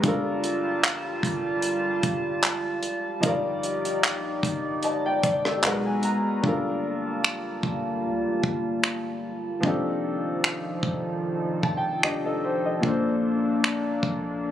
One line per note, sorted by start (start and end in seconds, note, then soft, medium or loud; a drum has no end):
0.01 1.20 G1 loud
0.01 3.18 G3 medium
0.01 3.20 G3 medium
0.01 3.19 D4 medium
0.01 3.20 F4 medium
0.01 3.20 A5 medium
0.01 kick loud
0.01 closed hi-hat medium
0.06 3.21 A4 medium
0.06 3.22 A#4 medium
0.44 closed hi-hat medium
0.84 clap loud
0.84 closed hi-hat medium
1.23 2.00 G1 loud
1.23 kick medium
1.23 closed hi-hat medium
1.62 closed hi-hat medium
2.03 2.80 G1 loud
2.03 kick medium
2.03 closed hi-hat medium
2.43 clap loud
2.43 closed hi-hat medium
2.83 closed hi-hat medium
3.20 4.06 G1 loud
3.20 3.29 F3 medium
3.20 5.59 D#4 medium
3.20 5.61 D#4 medium
3.20 5.60 F4 medium
3.20 5.61 G4 medium
3.20 5.61 D5 medium
3.20 kick loud
3.20 closed hi-hat medium
3.26 5.61 G3 medium
3.26 4.42 A#4 medium
3.26 4.43 D5 medium
3.63 closed hi-hat medium
3.85 closed hi-hat medium
4.04 4.42 A#1 loud
4.04 clap loud
4.04 closed hi-hat medium
4.43 5.20 G1 loud
4.43 kick medium
4.43 closed hi-hat medium
4.83 5.05 D#5 medium
4.83 5.04 A5 medium
4.83 closed hi-hat medium
5.06 5.23 D5 medium
5.06 5.44 G5 medium
5.23 5.62 G1 loud
5.23 5.44 D5 medium
5.23 kick medium
5.23 closed hi-hat medium
5.45 5.84 A4 medium
5.45 5.84 D5 medium
5.45 cross-stick loud
5.63 6.02 B1 loud
5.63 6.43 G#3 medium
5.63 6.43 B3 medium
5.63 6.44 D#4 medium
5.63 6.43 F#4 medium
5.63 6.44 F#4 medium
5.63 6.44 A#4 medium
5.63 6.45 B4 medium
5.63 5.84 F#5 medium
5.63 6.43 A#5 medium
5.63 clap loud
5.63 closed hi-hat medium
5.86 6.03 G#5 medium
6.03 6.41 A#5 medium
6.03 closed hi-hat medium
6.41 7.60 G1 loud
6.41 9.58 G3 medium
6.41 9.60 G3 medium
6.41 9.60 A#3 medium
6.41 9.59 D4 medium
6.41 9.60 F4 medium
6.41 9.60 A5 medium
6.41 kick loud
6.46 9.61 A4 medium
6.46 9.62 A#4 medium
7.24 finger snap loud
7.63 8.05 G1 loud
7.63 kick medium
8.04 8.27 D2 loud
8.25 8.43 G1 loud
8.44 9.60 G1 loud
8.44 kick medium
8.84 finger snap loud
9.60 10.80 F1 loud
9.60 12.80 D#3 medium
9.60 12.78 F3 medium
9.60 12.80 F3 medium
9.60 12.79 C4 medium
9.60 11.99 D4 medium
9.60 14.51 A4 medium
9.60 kick loud
9.65 12.00 D#4 medium
9.65 12.01 G4 medium
9.65 12.02 A4 medium
10.44 finger snap loud
10.83 11.60 F1 loud
10.83 kick medium
11.63 12.02 F1 loud
11.63 11.76 A5 medium
11.63 kick medium
11.77 12.02 G5 medium
12.03 12.80 F1 loud
12.03 12.25 D4 medium
12.03 12.24 G4 medium
12.03 12.64 D#5 medium
12.03 finger snap loud
12.26 12.43 D#4 medium
12.26 12.43 A4 medium
12.44 12.65 G4 medium
12.44 12.64 C5 medium
12.65 12.84 A4 medium
12.65 13.03 D#5 medium
12.80 14.00 A#1 loud
12.80 14.51 A#2 medium
12.80 14.51 A#3 medium
12.80 14.51 D4 medium
12.80 kick medium
12.86 14.51 A4 medium
12.86 14.51 C5 medium
13.64 finger snap loud
14.03 14.51 A#1 loud
14.03 kick medium